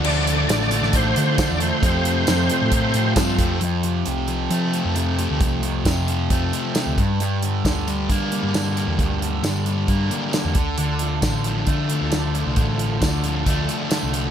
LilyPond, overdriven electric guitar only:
\new Staff \with { instrumentName = "Overdriven electric guitar" } { \clef bass \time 4/4 \key f \mixolydian \tempo 4 = 134 <d f a d'>8 <f a d'>8 <d f a d'>8 <f a d'>8 <d f a d'>8 <d f a d'>8 <d f a d'>8 <f a d'>8 | <f, c f a c'>8 <f a c'>8 <f, c f a c'>8 <f a c'>8 <c f a c'>8 <f, c f a c'>8 <c f a c'>8 <f a c'>8 | f,8 c8 c8 f8 a8 f8 c8 f8 | f,8 c8 c8 f8 a8 f8 c8 g,8 |
g,8 d8 d8 g8 bes8 g8 d8 g8 | g,8 d8 d8 g8 bes8 g8 d8 d8 | d8 f8 d8 f8 a8 f8 d8 f8 | d8 f8 d8 f8 a8 f8 d8 f8 | }